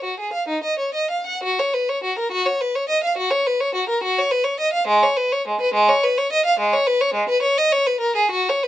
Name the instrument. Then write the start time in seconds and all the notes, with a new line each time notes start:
violin
0.04 F#4
0.20 G#4
0.33 F5
0.48 D#4
0.63 D#5
0.79 C#5
0.94 D#5
1.10 F5
1.26 F#5
1.43 F#4
1.59 C#5
1.73 B4
1.89 C#5
2.04 F#4
2.19 A#4
2.32 F#4
2.46 C#5
2.61 B4
2.75 C#5
2.89 D#5
3.03 F5
3.17 F#4
3.30 C#5
3.47 B4
3.60 C#5
3.75 F#4
3.89 A#4
4.03 F#4
4.18 C#5
4.31 B4
4.44 C#5
4.60 D#5
4.73 F5
4.87 G#3
5.03 C#5
5.17 B4
5.32 C#5
5.47 G#3
5.61 B4
5.74 G#3
5.88 C#5
6.03 B4
6.18 C#5
6.32 D#5
6.45 F5
6.59 G#3
6.73 C#5
6.87 B4
7.01 C#5
7.14 G#3
7.29 B4
7.42 C#5
7.57 D#5
7.72 C#5
7.86 B4
8.00 A#4
8.16 G#4
8.31 F#4
8.49 C#5
8.63 B4